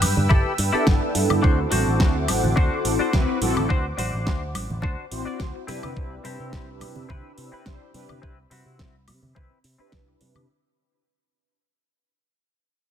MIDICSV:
0, 0, Header, 1, 8, 480
1, 0, Start_track
1, 0, Tempo, 566038
1, 1216, Time_signature, 4, 2, 24, 8
1, 10944, End_track
2, 0, Start_track
2, 0, Title_t, "Analog synth pad"
2, 0, Program_c, 0, 89
2, 0, Note_on_c, 0, 71, 71
2, 0, Note_on_c, 0, 79, 67
2, 0, Note_on_c, 0, 88, 84
2, 1182, Note_off_c, 0, 71, 0
2, 1183, Note_off_c, 0, 88, 0
2, 1184, Note_off_c, 0, 79, 0
2, 1218, Note_on_c, 0, 86, 84
2, 1219, Note_on_c, 0, 78, 66
2, 1220, Note_on_c, 0, 72, 74
2, 4783, Note_off_c, 0, 86, 0
2, 4784, Note_off_c, 0, 72, 0
2, 4784, Note_off_c, 0, 78, 0
2, 4814, Note_on_c, 0, 60, 73
2, 4815, Note_on_c, 0, 83, 71
2, 4816, Note_on_c, 0, 88, 84
2, 8861, Note_off_c, 0, 60, 0
2, 8862, Note_off_c, 0, 83, 0
2, 8862, Note_off_c, 0, 88, 0
2, 10944, End_track
3, 0, Start_track
3, 0, Title_t, "Clean electric guitar"
3, 0, Program_c, 1, 27
3, 249, Note_on_c, 1, 64, 82
3, 256, Note_on_c, 1, 67, 81
3, 263, Note_on_c, 1, 69, 92
3, 436, Note_off_c, 1, 64, 0
3, 440, Note_off_c, 1, 67, 0
3, 443, Note_off_c, 1, 69, 0
3, 615, Note_on_c, 1, 64, 88
3, 622, Note_on_c, 1, 67, 78
3, 630, Note_on_c, 1, 69, 95
3, 732, Note_off_c, 1, 64, 0
3, 735, Note_off_c, 1, 67, 0
3, 739, Note_off_c, 1, 69, 0
3, 1208, Note_on_c, 1, 62, 110
3, 1215, Note_on_c, 1, 66, 97
3, 1223, Note_on_c, 1, 72, 119
3, 1339, Note_off_c, 1, 62, 0
3, 1343, Note_off_c, 1, 66, 0
3, 1347, Note_off_c, 1, 72, 0
3, 1447, Note_on_c, 1, 62, 92
3, 1455, Note_on_c, 1, 66, 82
3, 1462, Note_on_c, 1, 72, 101
3, 1819, Note_off_c, 1, 62, 0
3, 1823, Note_off_c, 1, 66, 0
3, 1826, Note_off_c, 1, 72, 0
3, 2170, Note_on_c, 1, 62, 86
3, 2177, Note_on_c, 1, 66, 77
3, 2184, Note_on_c, 1, 72, 89
3, 2356, Note_off_c, 1, 62, 0
3, 2360, Note_off_c, 1, 66, 0
3, 2364, Note_off_c, 1, 72, 0
3, 2538, Note_on_c, 1, 62, 88
3, 2547, Note_on_c, 1, 66, 83
3, 2554, Note_on_c, 1, 72, 97
3, 2653, Note_off_c, 1, 62, 0
3, 2658, Note_off_c, 1, 66, 0
3, 2661, Note_off_c, 1, 72, 0
3, 3129, Note_on_c, 1, 62, 105
3, 3136, Note_on_c, 1, 66, 101
3, 3144, Note_on_c, 1, 72, 121
3, 3260, Note_off_c, 1, 62, 0
3, 3263, Note_off_c, 1, 66, 0
3, 3268, Note_off_c, 1, 72, 0
3, 3369, Note_on_c, 1, 62, 88
3, 3376, Note_on_c, 1, 66, 86
3, 3384, Note_on_c, 1, 72, 99
3, 3740, Note_off_c, 1, 62, 0
3, 3743, Note_off_c, 1, 66, 0
3, 3747, Note_off_c, 1, 72, 0
3, 4089, Note_on_c, 1, 62, 84
3, 4097, Note_on_c, 1, 66, 77
3, 4104, Note_on_c, 1, 72, 93
3, 4276, Note_off_c, 1, 62, 0
3, 4280, Note_off_c, 1, 66, 0
3, 4284, Note_off_c, 1, 72, 0
3, 4454, Note_on_c, 1, 62, 86
3, 4462, Note_on_c, 1, 66, 74
3, 4470, Note_on_c, 1, 74, 94
3, 4572, Note_off_c, 1, 62, 0
3, 4575, Note_off_c, 1, 66, 0
3, 4579, Note_off_c, 1, 74, 0
3, 4810, Note_on_c, 1, 60, 91
3, 4818, Note_on_c, 1, 64, 82
3, 4825, Note_on_c, 1, 71, 100
3, 5203, Note_off_c, 1, 60, 0
3, 5207, Note_off_c, 1, 64, 0
3, 5210, Note_off_c, 1, 71, 0
3, 5291, Note_on_c, 1, 60, 88
3, 5298, Note_on_c, 1, 64, 82
3, 5304, Note_on_c, 1, 67, 98
3, 5661, Note_off_c, 1, 60, 0
3, 5664, Note_off_c, 1, 64, 0
3, 5667, Note_off_c, 1, 67, 0
3, 6009, Note_on_c, 1, 60, 84
3, 6017, Note_on_c, 1, 64, 77
3, 6026, Note_on_c, 1, 71, 94
3, 6196, Note_off_c, 1, 60, 0
3, 6200, Note_off_c, 1, 64, 0
3, 6204, Note_off_c, 1, 71, 0
3, 6376, Note_on_c, 1, 60, 84
3, 6383, Note_on_c, 1, 64, 78
3, 6391, Note_on_c, 1, 71, 93
3, 6492, Note_off_c, 1, 60, 0
3, 6496, Note_off_c, 1, 64, 0
3, 6500, Note_off_c, 1, 71, 0
3, 6968, Note_on_c, 1, 60, 107
3, 6976, Note_on_c, 1, 64, 92
3, 6984, Note_on_c, 1, 71, 114
3, 7099, Note_off_c, 1, 60, 0
3, 7104, Note_off_c, 1, 64, 0
3, 7107, Note_off_c, 1, 71, 0
3, 7211, Note_on_c, 1, 60, 85
3, 7219, Note_on_c, 1, 64, 82
3, 7227, Note_on_c, 1, 66, 98
3, 7581, Note_off_c, 1, 60, 0
3, 7585, Note_off_c, 1, 64, 0
3, 7589, Note_off_c, 1, 66, 0
3, 7929, Note_on_c, 1, 60, 79
3, 7937, Note_on_c, 1, 64, 72
3, 7945, Note_on_c, 1, 71, 92
3, 8116, Note_off_c, 1, 60, 0
3, 8120, Note_off_c, 1, 64, 0
3, 8124, Note_off_c, 1, 71, 0
3, 8297, Note_on_c, 1, 60, 84
3, 8304, Note_on_c, 1, 64, 76
3, 8313, Note_on_c, 1, 71, 92
3, 8413, Note_off_c, 1, 60, 0
3, 8416, Note_off_c, 1, 64, 0
3, 8421, Note_off_c, 1, 71, 0
3, 10944, End_track
4, 0, Start_track
4, 0, Title_t, "Analog polysynth"
4, 0, Program_c, 2, 90
4, 614, Note_on_c, 2, 59, 97
4, 622, Note_on_c, 2, 62, 85
4, 625, Note_on_c, 2, 64, 88
4, 631, Note_on_c, 2, 69, 101
4, 1184, Note_off_c, 2, 59, 0
4, 1188, Note_off_c, 2, 62, 0
4, 1190, Note_off_c, 2, 64, 0
4, 1193, Note_off_c, 2, 69, 0
4, 1208, Note_on_c, 2, 60, 68
4, 1215, Note_on_c, 2, 64, 64
4, 1226, Note_on_c, 2, 69, 77
4, 2625, Note_off_c, 2, 60, 0
4, 2628, Note_off_c, 2, 64, 0
4, 2634, Note_off_c, 2, 69, 0
4, 2655, Note_on_c, 2, 60, 86
4, 2658, Note_on_c, 2, 64, 76
4, 2660, Note_on_c, 2, 66, 82
4, 2663, Note_on_c, 2, 71, 94
4, 2868, Note_off_c, 2, 60, 0
4, 2870, Note_off_c, 2, 64, 0
4, 2871, Note_off_c, 2, 66, 0
4, 2873, Note_off_c, 2, 71, 0
4, 2895, Note_on_c, 2, 60, 92
4, 2899, Note_on_c, 2, 64, 86
4, 2900, Note_on_c, 2, 66, 84
4, 2902, Note_on_c, 2, 69, 100
4, 3109, Note_off_c, 2, 60, 0
4, 3110, Note_off_c, 2, 64, 0
4, 3111, Note_off_c, 2, 66, 0
4, 3112, Note_off_c, 2, 69, 0
4, 3135, Note_on_c, 2, 60, 76
4, 3138, Note_on_c, 2, 64, 69
4, 3141, Note_on_c, 2, 66, 65
4, 3144, Note_on_c, 2, 71, 84
4, 3210, Note_off_c, 2, 60, 0
4, 3211, Note_off_c, 2, 64, 0
4, 3213, Note_off_c, 2, 66, 0
4, 3214, Note_off_c, 2, 71, 0
4, 4333, Note_on_c, 2, 60, 86
4, 4334, Note_on_c, 2, 64, 75
4, 4338, Note_on_c, 2, 66, 81
4, 4341, Note_on_c, 2, 72, 96
4, 4788, Note_off_c, 2, 60, 0
4, 4788, Note_off_c, 2, 64, 0
4, 4790, Note_off_c, 2, 66, 0
4, 4792, Note_off_c, 2, 72, 0
4, 4812, Note_on_c, 2, 62, 82
4, 4814, Note_on_c, 2, 64, 75
4, 4817, Note_on_c, 2, 67, 71
4, 4820, Note_on_c, 2, 71, 92
4, 5027, Note_off_c, 2, 62, 0
4, 5028, Note_off_c, 2, 64, 0
4, 5029, Note_off_c, 2, 67, 0
4, 5031, Note_off_c, 2, 71, 0
4, 5047, Note_on_c, 2, 62, 69
4, 5052, Note_on_c, 2, 64, 68
4, 5058, Note_on_c, 2, 67, 66
4, 5064, Note_on_c, 2, 71, 76
4, 6464, Note_off_c, 2, 62, 0
4, 6467, Note_off_c, 2, 64, 0
4, 6470, Note_off_c, 2, 67, 0
4, 6473, Note_off_c, 2, 71, 0
4, 6494, Note_on_c, 2, 62, 85
4, 6497, Note_on_c, 2, 64, 76
4, 6500, Note_on_c, 2, 67, 79
4, 6503, Note_on_c, 2, 72, 94
4, 6708, Note_off_c, 2, 62, 0
4, 6709, Note_off_c, 2, 64, 0
4, 6711, Note_off_c, 2, 67, 0
4, 6713, Note_off_c, 2, 72, 0
4, 6736, Note_on_c, 2, 62, 94
4, 6738, Note_on_c, 2, 64, 83
4, 6742, Note_on_c, 2, 67, 84
4, 6743, Note_on_c, 2, 71, 102
4, 6949, Note_off_c, 2, 62, 0
4, 6950, Note_off_c, 2, 64, 0
4, 6952, Note_off_c, 2, 67, 0
4, 6952, Note_off_c, 2, 71, 0
4, 6977, Note_on_c, 2, 62, 70
4, 6983, Note_on_c, 2, 67, 68
4, 6984, Note_on_c, 2, 72, 77
4, 7051, Note_off_c, 2, 62, 0
4, 7054, Note_off_c, 2, 67, 0
4, 7054, Note_off_c, 2, 72, 0
4, 8295, Note_on_c, 2, 62, 91
4, 8301, Note_on_c, 2, 64, 84
4, 8308, Note_on_c, 2, 67, 80
4, 8312, Note_on_c, 2, 71, 103
4, 8865, Note_off_c, 2, 62, 0
4, 8868, Note_off_c, 2, 64, 0
4, 8871, Note_off_c, 2, 67, 0
4, 8873, Note_off_c, 2, 71, 0
4, 10944, End_track
5, 0, Start_track
5, 0, Title_t, "Picked electric bass"
5, 0, Program_c, 3, 34
5, 19, Note_on_c, 3, 43, 76
5, 111, Note_off_c, 3, 43, 0
5, 144, Note_on_c, 3, 43, 94
5, 226, Note_off_c, 3, 43, 0
5, 259, Note_on_c, 3, 31, 90
5, 351, Note_off_c, 3, 31, 0
5, 497, Note_on_c, 3, 43, 86
5, 590, Note_off_c, 3, 43, 0
5, 740, Note_on_c, 3, 31, 92
5, 832, Note_off_c, 3, 31, 0
5, 976, Note_on_c, 3, 43, 79
5, 1069, Note_off_c, 3, 43, 0
5, 1103, Note_on_c, 3, 43, 85
5, 1186, Note_off_c, 3, 43, 0
5, 1220, Note_on_c, 3, 38, 96
5, 1398, Note_off_c, 3, 38, 0
5, 1458, Note_on_c, 3, 33, 93
5, 1550, Note_off_c, 3, 33, 0
5, 1584, Note_on_c, 3, 33, 85
5, 1700, Note_off_c, 3, 33, 0
5, 1700, Note_on_c, 3, 38, 90
5, 1936, Note_off_c, 3, 38, 0
5, 1936, Note_on_c, 3, 33, 74
5, 2029, Note_off_c, 3, 33, 0
5, 2062, Note_on_c, 3, 33, 92
5, 2146, Note_off_c, 3, 33, 0
5, 2415, Note_on_c, 3, 33, 69
5, 2509, Note_off_c, 3, 33, 0
5, 2659, Note_on_c, 3, 38, 74
5, 2751, Note_off_c, 3, 38, 0
5, 2895, Note_on_c, 3, 33, 95
5, 2989, Note_off_c, 3, 33, 0
5, 3022, Note_on_c, 3, 33, 84
5, 3106, Note_off_c, 3, 33, 0
5, 3140, Note_on_c, 3, 38, 91
5, 3318, Note_off_c, 3, 38, 0
5, 3374, Note_on_c, 3, 33, 93
5, 3468, Note_off_c, 3, 33, 0
5, 3504, Note_on_c, 3, 33, 88
5, 3619, Note_off_c, 3, 33, 0
5, 3619, Note_on_c, 3, 38, 92
5, 3857, Note_off_c, 3, 38, 0
5, 3857, Note_on_c, 3, 33, 73
5, 3950, Note_off_c, 3, 33, 0
5, 3984, Note_on_c, 3, 33, 95
5, 4067, Note_off_c, 3, 33, 0
5, 4099, Note_on_c, 3, 38, 89
5, 4191, Note_off_c, 3, 38, 0
5, 4337, Note_on_c, 3, 33, 73
5, 4430, Note_off_c, 3, 33, 0
5, 4579, Note_on_c, 3, 38, 77
5, 4671, Note_off_c, 3, 38, 0
5, 4818, Note_on_c, 3, 48, 95
5, 4910, Note_off_c, 3, 48, 0
5, 4945, Note_on_c, 3, 48, 82
5, 5027, Note_off_c, 3, 48, 0
5, 5059, Note_on_c, 3, 36, 89
5, 5238, Note_off_c, 3, 36, 0
5, 5298, Note_on_c, 3, 48, 89
5, 5391, Note_off_c, 3, 48, 0
5, 5424, Note_on_c, 3, 48, 86
5, 5539, Note_on_c, 3, 36, 90
5, 5552, Note_off_c, 3, 48, 0
5, 5776, Note_on_c, 3, 48, 74
5, 5789, Note_off_c, 3, 36, 0
5, 5870, Note_off_c, 3, 48, 0
5, 5902, Note_on_c, 3, 48, 92
5, 5985, Note_off_c, 3, 48, 0
5, 6021, Note_on_c, 3, 36, 91
5, 6112, Note_off_c, 3, 36, 0
5, 6256, Note_on_c, 3, 48, 72
5, 6350, Note_off_c, 3, 48, 0
5, 6500, Note_on_c, 3, 36, 74
5, 6592, Note_off_c, 3, 36, 0
5, 6734, Note_on_c, 3, 48, 92
5, 6829, Note_off_c, 3, 48, 0
5, 6862, Note_on_c, 3, 48, 84
5, 6945, Note_off_c, 3, 48, 0
5, 6980, Note_on_c, 3, 36, 89
5, 7158, Note_off_c, 3, 36, 0
5, 7215, Note_on_c, 3, 48, 90
5, 7309, Note_off_c, 3, 48, 0
5, 7342, Note_on_c, 3, 48, 80
5, 7460, Note_on_c, 3, 36, 89
5, 7473, Note_off_c, 3, 48, 0
5, 7696, Note_on_c, 3, 48, 74
5, 7708, Note_off_c, 3, 36, 0
5, 7789, Note_off_c, 3, 48, 0
5, 7822, Note_on_c, 3, 48, 90
5, 7905, Note_off_c, 3, 48, 0
5, 7938, Note_on_c, 3, 36, 89
5, 8031, Note_off_c, 3, 36, 0
5, 8176, Note_on_c, 3, 48, 68
5, 8269, Note_off_c, 3, 48, 0
5, 8420, Note_on_c, 3, 36, 89
5, 8598, Note_off_c, 3, 36, 0
5, 8655, Note_on_c, 3, 48, 89
5, 8749, Note_off_c, 3, 48, 0
5, 8783, Note_on_c, 3, 48, 80
5, 8866, Note_off_c, 3, 48, 0
5, 10944, End_track
6, 0, Start_track
6, 0, Title_t, "Muted clean electric guitar strokes"
6, 854, Note_on_c, 9, 29, 33
6, 939, Note_off_c, 9, 29, 0
6, 2777, Note_on_c, 9, 29, 33
6, 2862, Note_off_c, 9, 29, 0
6, 4697, Note_on_c, 9, 29, 30
6, 4782, Note_off_c, 9, 29, 0
6, 6616, Note_on_c, 9, 29, 33
6, 6701, Note_off_c, 9, 29, 0
6, 8537, Note_on_c, 9, 29, 31
6, 8622, Note_off_c, 9, 29, 0
6, 10944, End_track
7, 0, Start_track
7, 0, Title_t, "Muted picked electric bass strokes"
7, 385, Note_on_c, 9, 29, 42
7, 470, Note_off_c, 9, 29, 0
7, 625, Note_on_c, 9, 29, 39
7, 710, Note_off_c, 9, 29, 0
7, 2543, Note_on_c, 9, 29, 39
7, 2628, Note_off_c, 9, 29, 0
7, 6383, Note_on_c, 9, 29, 40
7, 6468, Note_off_c, 9, 29, 0
7, 8063, Note_on_c, 9, 29, 40
7, 8148, Note_off_c, 9, 29, 0
7, 8304, Note_on_c, 9, 29, 39
7, 8388, Note_off_c, 9, 29, 0
7, 10944, End_track
8, 0, Start_track
8, 0, Title_t, "Drums"
8, 15, Note_on_c, 9, 46, 106
8, 15, Note_on_c, 9, 76, 65
8, 21, Note_on_c, 9, 63, 58
8, 100, Note_off_c, 9, 46, 0
8, 100, Note_off_c, 9, 76, 0
8, 106, Note_off_c, 9, 63, 0
8, 145, Note_on_c, 9, 64, 78
8, 229, Note_off_c, 9, 64, 0
8, 253, Note_on_c, 9, 64, 80
8, 259, Note_on_c, 9, 36, 112
8, 338, Note_off_c, 9, 64, 0
8, 344, Note_off_c, 9, 36, 0
8, 495, Note_on_c, 9, 46, 101
8, 580, Note_off_c, 9, 46, 0
8, 735, Note_on_c, 9, 38, 113
8, 740, Note_on_c, 9, 36, 119
8, 820, Note_off_c, 9, 38, 0
8, 825, Note_off_c, 9, 36, 0
8, 975, Note_on_c, 9, 46, 97
8, 975, Note_on_c, 9, 63, 54
8, 1060, Note_off_c, 9, 46, 0
8, 1060, Note_off_c, 9, 63, 0
8, 1104, Note_on_c, 9, 76, 76
8, 1109, Note_on_c, 9, 64, 73
8, 1189, Note_off_c, 9, 76, 0
8, 1193, Note_off_c, 9, 64, 0
8, 1220, Note_on_c, 9, 36, 110
8, 1305, Note_off_c, 9, 36, 0
8, 1455, Note_on_c, 9, 46, 101
8, 1458, Note_on_c, 9, 63, 60
8, 1540, Note_off_c, 9, 46, 0
8, 1543, Note_off_c, 9, 63, 0
8, 1695, Note_on_c, 9, 38, 102
8, 1700, Note_on_c, 9, 36, 113
8, 1780, Note_off_c, 9, 38, 0
8, 1785, Note_off_c, 9, 36, 0
8, 1936, Note_on_c, 9, 46, 102
8, 1936, Note_on_c, 9, 76, 65
8, 1939, Note_on_c, 9, 63, 54
8, 2021, Note_off_c, 9, 46, 0
8, 2021, Note_off_c, 9, 76, 0
8, 2023, Note_off_c, 9, 63, 0
8, 2072, Note_on_c, 9, 64, 67
8, 2156, Note_off_c, 9, 64, 0
8, 2178, Note_on_c, 9, 64, 76
8, 2180, Note_on_c, 9, 36, 107
8, 2263, Note_off_c, 9, 64, 0
8, 2265, Note_off_c, 9, 36, 0
8, 2417, Note_on_c, 9, 46, 96
8, 2502, Note_off_c, 9, 46, 0
8, 2657, Note_on_c, 9, 38, 111
8, 2660, Note_on_c, 9, 36, 111
8, 2742, Note_off_c, 9, 38, 0
8, 2744, Note_off_c, 9, 36, 0
8, 2897, Note_on_c, 9, 46, 100
8, 2901, Note_on_c, 9, 63, 61
8, 2982, Note_off_c, 9, 46, 0
8, 2986, Note_off_c, 9, 63, 0
8, 3026, Note_on_c, 9, 64, 74
8, 3026, Note_on_c, 9, 76, 74
8, 3111, Note_off_c, 9, 64, 0
8, 3111, Note_off_c, 9, 76, 0
8, 3140, Note_on_c, 9, 36, 102
8, 3225, Note_off_c, 9, 36, 0
8, 3379, Note_on_c, 9, 46, 95
8, 3380, Note_on_c, 9, 63, 55
8, 3464, Note_off_c, 9, 46, 0
8, 3465, Note_off_c, 9, 63, 0
8, 3618, Note_on_c, 9, 38, 96
8, 3620, Note_on_c, 9, 36, 104
8, 3703, Note_off_c, 9, 38, 0
8, 3704, Note_off_c, 9, 36, 0
8, 3858, Note_on_c, 9, 63, 54
8, 3859, Note_on_c, 9, 46, 96
8, 3859, Note_on_c, 9, 76, 66
8, 3943, Note_off_c, 9, 63, 0
8, 3944, Note_off_c, 9, 46, 0
8, 3944, Note_off_c, 9, 76, 0
8, 3989, Note_on_c, 9, 64, 60
8, 4074, Note_off_c, 9, 64, 0
8, 4087, Note_on_c, 9, 64, 84
8, 4099, Note_on_c, 9, 36, 106
8, 4172, Note_off_c, 9, 64, 0
8, 4184, Note_off_c, 9, 36, 0
8, 4338, Note_on_c, 9, 46, 90
8, 4423, Note_off_c, 9, 46, 0
8, 4577, Note_on_c, 9, 38, 108
8, 4579, Note_on_c, 9, 36, 110
8, 4662, Note_off_c, 9, 38, 0
8, 4664, Note_off_c, 9, 36, 0
8, 4819, Note_on_c, 9, 46, 93
8, 4827, Note_on_c, 9, 63, 54
8, 4904, Note_off_c, 9, 46, 0
8, 4912, Note_off_c, 9, 63, 0
8, 4946, Note_on_c, 9, 76, 73
8, 4951, Note_on_c, 9, 64, 78
8, 5031, Note_off_c, 9, 76, 0
8, 5036, Note_off_c, 9, 64, 0
8, 5059, Note_on_c, 9, 36, 100
8, 5144, Note_off_c, 9, 36, 0
8, 5295, Note_on_c, 9, 63, 51
8, 5299, Note_on_c, 9, 46, 92
8, 5380, Note_off_c, 9, 63, 0
8, 5383, Note_off_c, 9, 46, 0
8, 5537, Note_on_c, 9, 38, 105
8, 5539, Note_on_c, 9, 36, 108
8, 5621, Note_off_c, 9, 38, 0
8, 5624, Note_off_c, 9, 36, 0
8, 5771, Note_on_c, 9, 63, 58
8, 5776, Note_on_c, 9, 46, 91
8, 5776, Note_on_c, 9, 76, 64
8, 5856, Note_off_c, 9, 63, 0
8, 5861, Note_off_c, 9, 46, 0
8, 5861, Note_off_c, 9, 76, 0
8, 5900, Note_on_c, 9, 64, 72
8, 5985, Note_off_c, 9, 64, 0
8, 6016, Note_on_c, 9, 64, 79
8, 6020, Note_on_c, 9, 36, 98
8, 6101, Note_off_c, 9, 64, 0
8, 6105, Note_off_c, 9, 36, 0
8, 6255, Note_on_c, 9, 46, 94
8, 6340, Note_off_c, 9, 46, 0
8, 6494, Note_on_c, 9, 38, 114
8, 6500, Note_on_c, 9, 36, 108
8, 6579, Note_off_c, 9, 38, 0
8, 6585, Note_off_c, 9, 36, 0
8, 6736, Note_on_c, 9, 46, 87
8, 6739, Note_on_c, 9, 63, 59
8, 6821, Note_off_c, 9, 46, 0
8, 6823, Note_off_c, 9, 63, 0
8, 6863, Note_on_c, 9, 76, 75
8, 6868, Note_on_c, 9, 64, 70
8, 6947, Note_off_c, 9, 76, 0
8, 6952, Note_off_c, 9, 64, 0
8, 6980, Note_on_c, 9, 36, 105
8, 7065, Note_off_c, 9, 36, 0
8, 7218, Note_on_c, 9, 46, 95
8, 7221, Note_on_c, 9, 63, 49
8, 7302, Note_off_c, 9, 46, 0
8, 7306, Note_off_c, 9, 63, 0
8, 7456, Note_on_c, 9, 38, 106
8, 7460, Note_on_c, 9, 36, 105
8, 7541, Note_off_c, 9, 38, 0
8, 7544, Note_off_c, 9, 36, 0
8, 7697, Note_on_c, 9, 46, 94
8, 7697, Note_on_c, 9, 76, 62
8, 7704, Note_on_c, 9, 63, 51
8, 7782, Note_off_c, 9, 46, 0
8, 7782, Note_off_c, 9, 76, 0
8, 7789, Note_off_c, 9, 63, 0
8, 7827, Note_on_c, 9, 64, 65
8, 7912, Note_off_c, 9, 64, 0
8, 7939, Note_on_c, 9, 36, 100
8, 7940, Note_on_c, 9, 64, 77
8, 8024, Note_off_c, 9, 36, 0
8, 8025, Note_off_c, 9, 64, 0
8, 8176, Note_on_c, 9, 46, 93
8, 8260, Note_off_c, 9, 46, 0
8, 8414, Note_on_c, 9, 38, 112
8, 8419, Note_on_c, 9, 36, 104
8, 8499, Note_off_c, 9, 38, 0
8, 8504, Note_off_c, 9, 36, 0
8, 8655, Note_on_c, 9, 46, 92
8, 8662, Note_on_c, 9, 63, 59
8, 8740, Note_off_c, 9, 46, 0
8, 8747, Note_off_c, 9, 63, 0
8, 8776, Note_on_c, 9, 64, 77
8, 8782, Note_on_c, 9, 76, 67
8, 8861, Note_off_c, 9, 64, 0
8, 8867, Note_off_c, 9, 76, 0
8, 10944, End_track
0, 0, End_of_file